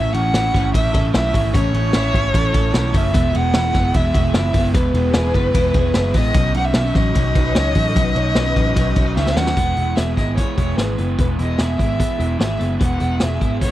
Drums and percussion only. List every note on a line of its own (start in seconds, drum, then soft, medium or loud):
0.14 ride medium
0.34 snare loud
0.34 ride medium
0.54 kick medium
0.54 snare soft
0.54 ride soft
0.74 kick medium
0.74 ride medium
0.94 kick loud
0.94 ride medium
1.14 snare loud
1.14 ride medium
1.34 kick loud
1.34 open hi-hat medium
1.34 ride medium
1.54 kick loud
1.54 hi-hat pedal medium
1.54 ride medium
1.74 ride medium
1.93 snare loud
1.93 ride medium
2.14 kick medium
2.14 ride soft
2.34 kick medium
2.34 ride medium
2.54 kick loud
2.54 ride medium
2.74 snare loud
2.74 ride medium
2.94 kick medium
2.94 open hi-hat medium
2.94 ride medium
3.14 kick loud
3.14 hi-hat pedal medium
3.14 ride medium
3.35 ride medium
3.53 snare loud
3.53 ride medium
3.74 kick medium
3.74 snare soft
3.74 ride soft
3.94 kick medium
3.94 ride medium
4.15 kick loud
4.15 ride medium
4.34 snare loud
4.34 ride medium
4.54 kick medium
4.54 open hi-hat medium
4.54 ride medium
4.74 kick loud
4.74 hi-hat pedal medium
4.74 ride medium
4.95 ride medium
5.13 snare loud
5.13 ride medium
5.34 kick medium
5.34 ride soft
5.54 kick medium
5.54 ride medium
5.74 kick loud
5.74 ride medium
5.94 snare loud
5.94 ride medium
6.14 kick medium
6.14 open hi-hat medium
6.14 ride medium
6.34 kick loud
6.34 hi-hat pedal medium
6.34 ride medium
6.54 ride medium
6.74 snare loud
6.74 ride medium
6.95 kick medium
6.95 snare soft
6.95 ride soft
7.15 kick medium
7.15 ride medium
7.35 kick medium
7.35 ride medium
7.55 snare loud
7.55 ride medium
7.75 kick medium
7.75 open hi-hat medium
7.75 ride medium
7.96 kick loud
7.96 hi-hat pedal medium
7.96 ride medium
8.16 ride medium
8.35 snare loud
8.35 ride medium
8.56 kick medium
8.56 ride soft
8.76 kick medium
8.76 ride medium
8.96 kick loud
8.96 ride medium
9.16 snare medium
9.27 snare medium
9.36 snare loud
9.47 snare loud
9.57 kick loud
9.57 closed hi-hat medium
9.77 closed hi-hat medium
9.97 snare loud
9.97 closed hi-hat medium
10.17 kick medium
10.17 snare soft
10.17 closed hi-hat medium
10.37 kick medium
10.37 closed hi-hat medium
10.58 kick medium
10.58 closed hi-hat medium
10.78 snare medium
10.78 closed hi-hat medium
10.98 closed hi-hat medium
11.19 kick loud
11.19 closed hi-hat medium
11.39 closed hi-hat medium
11.58 snare loud
11.58 closed hi-hat medium
11.79 kick medium
11.79 closed hi-hat medium
12.00 kick medium
12.00 closed hi-hat medium
12.20 closed hi-hat medium
12.40 snare loud
12.40 closed hi-hat medium
12.60 closed hi-hat medium
12.81 kick loud
12.81 closed hi-hat medium
13.00 closed hi-hat medium
13.20 snare loud
13.20 closed hi-hat medium
13.41 kick medium
13.41 closed hi-hat medium
13.61 kick medium
13.61 closed hi-hat medium